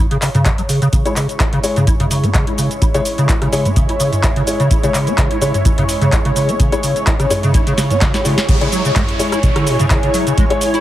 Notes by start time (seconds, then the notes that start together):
Already playing: C#5
0.11 C#3, closed hi-hat
0.22 C#3, clap, open hi-hat, cabasa
0.35 C#3, closed hi-hat, mid tom, cabasa
0.46 kick, clap, closed hi-hat, cabasa
0.58 F#3, closed hi-hat, cabasa
0.69 C#3, open hi-hat, cabasa
0.82 C#3, closed hi-hat, cabasa
0.93 C#3 G#3 E4 C#5, kick, closed hi-hat, cabasa
1.05 G#3 E4 C#5, closed hi-hat, cabasa
1.16 C#3, clap, open hi-hat, cabasa
1.29 closed hi-hat, cabasa
1.40 E4, kick, clap, closed hi-hat, cabasa
1.53 C#3, closed hi-hat
1.64 G#3 E4 C#5, open hi-hat, cabasa
1.76 C#3, closed hi-hat, mid tom, cabasa
1.87 E4, kick, closed hi-hat, cabasa
2.00 C#3, closed hi-hat, mid tom
2.11 C#3, open hi-hat, cabasa
2.24 C#4, closed hi-hat, mid tom, cabasa
2.34 C#3, kick, clap, closed hi-hat, cabasa
2.47 E4, closed hi-hat
2.58 C#3, open hi-hat, cabasa
2.71 closed hi-hat, cabasa
2.82 E4, kick, closed hi-hat, cabasa
2.94 C#3 G#3 E4 C#5, closed hi-hat, cabasa
3.05 open hi-hat, cabasa
3.18 C#3, closed hi-hat, cabasa
3.29 E4, kick, clap, closed hi-hat, cabasa
3.42 C#3, cross-stick, closed hi-hat
3.53 C#3 G#3 E4 C#5, open hi-hat, cabasa
3.65 C#4, closed hi-hat, mid tom, cabasa
3.76 C#3, kick, closed hi-hat, cabasa
3.89 E4, closed hi-hat
4.00 C#3, open hi-hat, cabasa
4.13 closed hi-hat, mid tom, cabasa
4.23 E4, kick, clap, closed hi-hat, cabasa
4.36 C#3, closed hi-hat
4.47 G#3 E4 C#5, open hi-hat, cabasa
4.60 C#3, closed hi-hat, cabasa
4.71 E4, kick, closed hi-hat, riser, cabasa
4.83 C#3 G#3 E4 C#5, closed hi-hat, cabasa
4.94 C#3, clap, open hi-hat, cabasa
5.07 C#4, closed hi-hat, cabasa
5.18 C#3, kick, clap, closed hi-hat, cabasa
5.31 E4, closed hi-hat
5.42 C#3 G#3 E4 C#5, open hi-hat, cabasa
5.54 closed hi-hat, mid tom, cabasa
5.65 E4, kick, closed hi-hat, cabasa
5.78 C#3, closed hi-hat, mid tom
5.89 open hi-hat, cabasa
6.02 C#3, closed hi-hat, mid tom, cabasa
6.12 E4, kick, clap, closed hi-hat, cabasa
6.25 C#3, closed hi-hat
6.36 C#3, open hi-hat, cabasa
6.49 C#4, closed hi-hat, cabasa
6.60 C#3, kick, closed hi-hat, cabasa
6.72 G#3 E4 C#5, closed hi-hat, cabasa
6.83 C#3, open hi-hat, cabasa
6.96 closed hi-hat, cabasa
7.07 E4, kick, clap, closed hi-hat, cabasa
7.20 C#3, cross-stick, closed hi-hat, cabasa
7.30 G#3 E4 C#5, mid tom, open hi-hat, cabasa
7.43 C#3, closed hi-hat, mid tom, cabasa
7.54 E4, kick, closed hi-hat, cabasa
7.67 C#3, closed hi-hat, cabasa
7.78 C#3, snare, open hi-hat, cabasa
7.90 C#4, closed hi-hat, mid tom, cabasa
8.01 C#3, kick, snare, clap, closed hi-hat, cabasa
8.14 E4, snare, closed hi-hat, cabasa
8.25 C#3 G#3 E4 C#5, open hi-hat, cabasa
8.38 snare, closed hi-hat, cabasa
8.49 C#3 G#3 E4 C#5, kick, closed hi-hat, downlifter, cabasa
8.58 C#3 G#3 E4 G#4 C#5, closed hi-hat
8.72 F#3, open hi-hat, cabasa
8.76 G#5
8.85 C#3, closed hi-hat, cabasa
8.96 G#3, kick, clap, closed hi-hat, mid tom, cabasa
9.09 closed hi-hat
9.19 G#3 E4 C#5, open hi-hat, cabasa
9.32 E4, cross-stick, closed hi-hat, cabasa
9.43 B2, kick, closed hi-hat, cabasa
9.56 D3, cross-stick, closed hi-hat
9.67 B2, open hi-hat, cabasa
9.79 C#3, closed hi-hat, mid tom, cabasa
9.90 C#3, kick, clap, closed hi-hat, cabasa
10.03 C#3, closed hi-hat
10.14 F#3, open hi-hat, cabasa
10.27 C#3, closed hi-hat, cabasa
10.38 G#3, kick, closed hi-hat, cabasa
10.50 G#3 E4 C#5, closed hi-hat
10.61 open hi-hat, cabasa
10.74 E4, closed hi-hat, cabasa